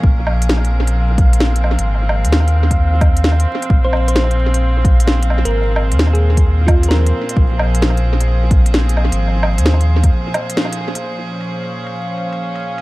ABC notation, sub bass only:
X:1
M:4/4
L:1/16
Q:"Swing 16ths" 1/4=131
K:Bbm
V:1 name="Sub bass" clef=bass
B,,,12- B,,,3 A,,,- | A,,,3 E,,8- E,,3 z2 | B,,,12- B,,,3 A,,,- | A,,,3 E,,8- E,,3 z2 |
B,,,12- B,,,3 A,,,- | A,,,3 E,,4- E,, z8 | z16 |]